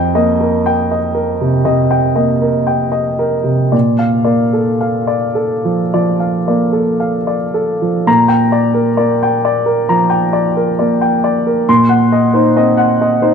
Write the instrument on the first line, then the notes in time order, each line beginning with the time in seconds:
grand piano
Already playing: F2 D#5 G5
0.15 A#3 D#5
0.41 A#4
0.66 G5
0.91 D#5
1.15 A#4
1.41 C3
1.65 C3 D#5
1.91 G5
2.16 A#3 D#5
2.42 A#4
2.67 G5
2.92 D#5
3.19 A#4
3.44 C3
3.72 A#2 D5
3.99 F5
4.25 A#3 D5
4.53 A4
4.81 F5
5.07 D5
5.35 A4
5.65 F3
5.94 F3 D5
6.20 F5
6.48 A#3 D5
6.72 A4
7.00 F5
7.27 D5
7.54 A4
7.82 F3
8.07 A#2 A#5
8.28 G5
8.52 D5
8.74 A#4
8.97 A#3 D5
9.23 G5
9.45 D5
9.66 A#4
9.89 F3 A#5
10.10 G5
10.33 D5
10.57 A#4
10.79 A#3 D5
11.01 G5
11.24 D5
11.47 A#4
11.69 A#2 C6
11.89 F#5
12.12 D#5
12.34 D#4 C5
12.56 C4 D#5
12.77 F#5
13.01 D#5
13.22 D#4 C5